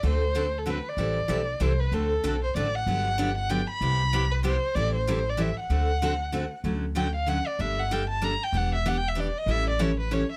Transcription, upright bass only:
X:1
M:3/4
L:1/8
Q:"Swing" 1/4=191
K:Dmix
V:1 name="Upright bass" clef=bass
D,,6 | A,,,2 B,,,2 C,,2 | D,,2 B,,,2 A,,,2 | G,,,6 |
C,,6 | A,,,6 | D,,6 | [K:D] D,,6 |
G,,,6 | E,,,6 | A,,,6 |]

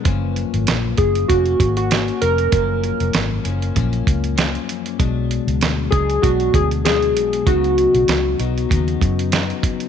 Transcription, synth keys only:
X:1
M:4/4
L:1/16
Q:"Swing 16ths" 1/4=97
K:F#
V:1 name="Synth keys"
z6 G2 F3 F3 A2- | A4 z12 | z6 G2 F2 G2 G4 | F12- F2 z2 |]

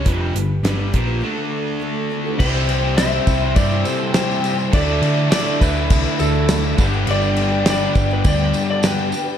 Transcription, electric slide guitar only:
X:1
M:4/4
L:1/16
Q:1/4=102
K:G
V:1 name="Electric slide guitar"
z16 | c4 e4 d2 c2 c3 z | d4 d2 B4 A4 z2 | d4 d3 B d3 d B3 z |]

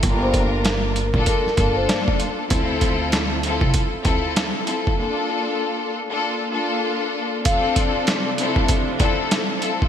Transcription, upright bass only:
X:1
M:4/4
L:1/16
Q:"Swing 16ths" 1/4=97
K:Dm
V:1 name="Upright bass" clef=bass
G,,,6- G,,, B,,, z2 G,,,2 z4 | D,,6- D,, C,, z2 D,,3 z3 | z16 | z16 |]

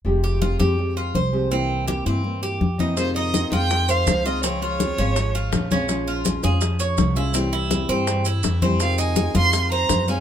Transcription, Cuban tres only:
X:1
M:4/4
L:1/8
Q:1/4=165
K:Fm
V:1 name="Cuban tres"
z G F G2 F c2 | C2 G C2 G2 E | z E2 F2 c2 F | C F2 D2 F2 D- |
D F2 A2 d2 =E | C =E2 C2 E2 C- | C E2 F2 c2 D |]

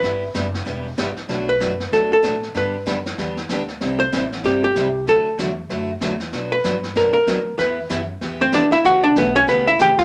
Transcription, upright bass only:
X:1
M:4/4
L:1/8
Q:"Swing" 1/4=191
K:G
V:1 name="Upright bass" clef=bass
G,,,2 F,,,2 E,,,2 G,,, z | B,,,2 F,,2 D,,2 A,,2 | G,,2 F,,2 E,,2 D,,2 | C,,2 A,,,2 G,,,2 C,,2 |
D,,2 E,,2 F,,2 E,,2 | B,,2 G,,2 F,, z D,,2 | E,,2 F,,2 E,,2 D,,2 | ^C,,2 B,,,2 C,,2 A,,, z |]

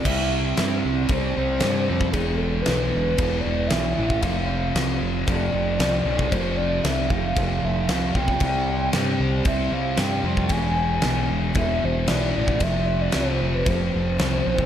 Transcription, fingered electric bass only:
X:1
M:4/4
L:1/8
Q:1/4=115
K:C
V:1 name="Fingered electric bass" clef=bass
C,,2 G,, C,, C,, C,, G,, F,, | E,,,2 B,,, E,,, E,,, E,,, B,,, A,,, | F,,,2 C,, F,,, F,,, F,,, C,, B,,, | F,,,2 C,, F,,, F,,, F,,, C,, B,,, |
C,,2 G,, C,, C,, C,, G,, F,, | E,,,2 B,,, E,,, E,,, E,,, B,,, A,,, | F,,,2 C,, F,,, F,,, F,,, C,, B,,, |]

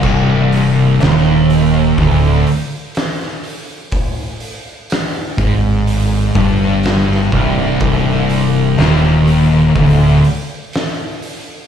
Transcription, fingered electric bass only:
X:1
M:4/4
L:1/8
Q:1/4=62
K:Cm
V:1 name="Fingered electric bass" clef=bass
C,,,2 E,,,2 D,,, z3 | z3 A,,,2 G,,,2 C,,, | C,,,2 E,,,2 D,,, z3 |]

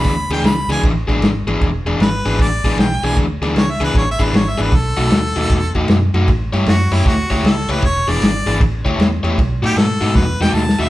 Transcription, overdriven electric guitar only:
X:1
M:4/4
L:1/8
Q:"Swing" 1/4=154
K:Emix
V:1 name="Overdriven electric guitar"
[E,B,DG] [E,B,DG] z [E,B,DG] z [E,B,DG] z [E,B,DG] | z [E,B,DG] z [E,B,DG] z [E,B,DG] z [E,B,DG] | z [E,B,DG] z [E,B,DG] z [E,B,DG] z [E,B,DG] | z [B,,A,^DF] z [B,,A,DF] z [B,,A,DF] z [B,,A,DF] |
z [A,E=Gc] z [A,EGc] z [A,EGc] z [A,EGc] | z [E,B,DG] z [E,B,DG] z [A,E=Gc] z [A,EGc] | z [B,,A,^DF] z [B,,A,DF] z [B,,A,DF] z [B,,A,DF] |]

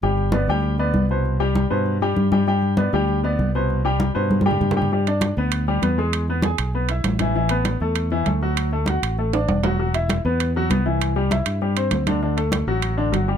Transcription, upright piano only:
X:1
M:4/4
L:1/8
Q:1/4=197
K:G
V:1 name="Upright piano"
[G,Gg]2 [B,Bd] [G,Gg]2 [B,Bd]2 [B,,Bc]- | [B,,Bc] [G,Gg]2 [B,,Bc]2 [G,Gg]2 [G,Gg] | [G,Gg]2 [B,Bd] [G,Gg]2 [B,Bd]2 [B,,Bc]- | [B,,Bc] [G,Gg]2 [B,,Bc]2 [G,Gg]2 [G,Gg] |
[G,G] [Dd]2 [B,B]2 [G,G] [B,B] [_A,_A]- | [_A,_A] [B,B] [^G^g]2 [B,B] [Ee]2 [E,E] | [E,E] [B,B]2 [A,A]2 [E,E] [A,A] [F,F]- | [F,F] [A,A] [Ff]2 [A,A] [Dd]2 [F,F] |
[F,F] [Ee]2 [B,B]2 [F,F] [B,B] [E,E]- | [E,E] [G,G] [Ee]2 [G,G] [Cc]2 [D,D] | [D,D] [A,A]2 [F,F]2 [D,D] [F,F] [G,G] |]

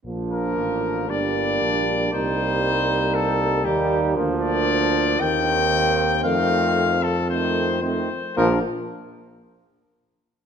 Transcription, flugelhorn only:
X:1
M:4/4
L:1/8
Q:1/4=115
K:Bb
V:1 name="Flugelhorn"
D4 D4 | E6 E2 | D4 C4 | C3 z C2 C z |
D z6 z |]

